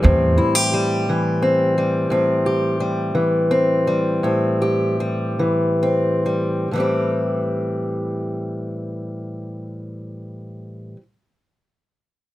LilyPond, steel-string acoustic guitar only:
\new Staff \with { instrumentName = "Steel-string acoustic guitar" } { \clef bass \time 3/4 \key a \minor \tempo 4 = 73 << { <g c'>8 e'16 g'16 g4 c'8 g8 | c'8 g'8 g4 c'8 g8 | c'8 g'8 g4 c'8 g8 | <e g c' g'>2.~ |
<e g c' g'>2. | } \\ { a,4. e4. | a,4. e4. | a,4. e4. | a,2.~ |
a,2. | } >> }